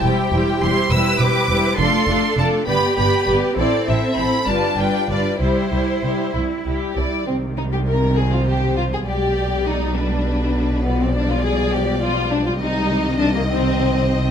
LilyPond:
<<
  \new Staff \with { instrumentName = "Violin section" } { \time 6/8 \key c \major \tempo 4. = 67 g''4 c'''8 e'''8 d'''4 | c'''4 a''8 b''8 b''8 r8 | d''8 e''8 b''8 a''8 g''8 d''8 | c''4. r4. |
\key c \minor r4. c''4. | d''4. b'4. | d''2. | ees''2. | }
  \new Staff \with { instrumentName = "Violin section" } { \time 6/8 \key c \major <g' c''>8 <g' c''>8 <g' c''>8 <g' c''>8 <g' c''>8 <g' c''>8 | <f' d''>8 <f' d''>8 <f' d''>8 <b' d''>8 <b' d''>8 <b' d''>8 | <a' c''>8 <a' c''>8 <a' c''>8 <b' d''>8 <b' d''>8 <b' d''>8 | <g' c''>8 <g' c''>8 <g' c''>8 e'8 g'8 d''8 |
\key c \minor c'8 ees'16 g'16 bes'8 aes'16 f'16 g'8 f'16 aes'16 | g'4 ees'8 d'4. | b16 c'16 d'16 f'16 aes'8 g'8 f'8 d'16 f'16 | ees'4 d'16 bes16 c'4. | }
  \new Staff \with { instrumentName = "Cello section" } { \time 6/8 \key c \major g'4. b'4. | a'4. g'4. | c'4. d'4. | e'2~ e'16 r8. |
\key c \minor c2. | b,2.~ | b,2. | c2. | }
  \new Staff \with { instrumentName = "Viola section" } { \time 6/8 \key c \major << { e'8 e'8 e'8 e'8 e'8 e'8 | d'8 d'8 d'8 g'8 g'8 g'8 | e'8 e'8 e'8 f'8 f'8 f'8 | e'8 e'8 e'8 e'8 e'8 e'8 |
\key c \minor g2.~ | g2. | g2.~ | g2. | } \\ { g8 g8 g8 g8 g8 g8 | a8 a8 a8 b8 b8 b8 | c'8 c'8 c'8 g8 g8 g8 | g8 g8 g8 g8 g8 g8 |
ees2. | g2. | f2. | ees2. | } >> }
  \new Staff \with { instrumentName = "Double bass section" } { \clef bass \time 6/8 \key c \major e,,8 e,,8 e,,8 e,,8 e,,8 e,,8 | f,,8 f,,8 f,,8 g,,8 g,,8 g,,8 | a,,8 a,,8 a,,8 g,,8 g,,8 g,,8 | c,8 c,8 c,8 c,8 c,8 c,8 |
\key c \minor c,2. | b,,2.~ | b,,2. | c,2. | }
>>